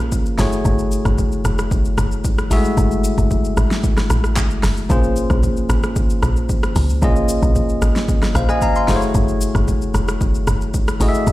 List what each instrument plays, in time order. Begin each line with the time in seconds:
Already playing: log drum bass A#1, tine electric piano A#3 C#4 F4 G#4 A#4
0.12 kick, shaker
0.26 shaker
0.38 log drum bass F#1, tine electric piano A3 E4 F#4 G#4 C#5, snare, open hi-hat, shaker
0.52 shaker
0.65 log drum bass F#1, kick, shaker
0.79 shaker
0.92 shaker
1.05 log drum bass F#1, kick, cross-stick, shaker
1.18 kick, shaker
1.32 shaker
1.45 log drum bass F1, cross-stick, shaker
1.58 cross-stick, shaker
1.71 kick, shaker
1.85 shaker
1.98 log drum bass F#1, cross-stick, shaker
2.12 shaker
2.24 kick, shaker
2.38 cross-stick, shaker
2.50 log drum bass G#1, tine electric piano G#3 E4 F#4 G#4 E5, open hi-hat, shaker
2.57 tine electric piano A3
2.65 shaker
2.77 log drum bass F#1, kick, shaker
2.91 shaker
3.04 shaker
3.18 log drum bass F#1, kick, shaker
3.31 kick, shaker
3.45 shaker
3.57 log drum bass G#1, cross-stick, shaker
3.71 snare, shaker
3.84 kick, shaker
3.97 cross-stick, snare, shaker
4.10 log drum bass A1, cross-stick, shaker
4.24 cross-stick, shaker
4.37 kick, clap, shaker
4.51 shaker
4.63 log drum bass F#1, cross-stick, snare, open hi-hat, shaker
4.77 shaker
4.89 log drum bass A#1, tine electric piano A#3 C#4 F4 G#4 C5, kick, shaker
5.04 shaker
5.16 shaker
5.30 log drum bass A#1, kick, cross-stick, shaker
5.43 kick, shaker
5.57 shaker
5.69 log drum bass G#1, cross-stick, shaker
5.83 cross-stick, shaker
5.96 kick, shaker
6.10 shaker
6.22 log drum bass A#1, cross-stick, shaker
6.36 shaker
6.49 kick, shaker
6.63 cross-stick, shaker
6.76 log drum bass C#2, open hi-hat, shaker
6.89 shaker
7.02 log drum bass A#1, tine electric piano A#3 C#4 F4 G#4 D#5, kick, shaker
7.16 shaker
7.29 shaker
7.43 log drum bass A#1, kick, shaker
7.55 kick, shaker
7.69 shaker
7.82 log drum bass G#1, cross-stick, shaker
7.96 snare, shaker
8.08 kick, shaker
8.22 cross-stick, snare, shaker
8.35 log drum bass A#1, tine electric piano C5 F5, cross-stick, shaker
8.49 tine electric piano D#5 G#5, cross-stick, shaker
8.62 tine electric piano F5 A#5, kick, shaker
8.75 tine electric piano F5 C6, shaker
8.87 log drum bass F#1, tine electric piano A3 E4 F#4 G#4 C5, snare, open hi-hat, shaker
8.96 tine electric piano C#5
9.02 shaker
9.15 log drum bass F#1, kick, shaker
9.28 shaker
9.41 shaker
9.55 log drum bass F#1, kick, cross-stick, shaker
9.68 kick, shaker
9.82 shaker
9.94 log drum bass F1, cross-stick, shaker
10.08 cross-stick, shaker
10.21 kick, shaker
10.35 shaker
10.47 log drum bass F#1, cross-stick, shaker
10.61 shaker
10.74 kick, shaker
10.88 cross-stick, shaker
11.00 log drum bass G#1, tine electric piano A3 E4 F#4 G#4 D#5, open hi-hat, shaker
11.09 tine electric piano E5
11.14 shaker
11.27 log drum bass F#1, kick, shaker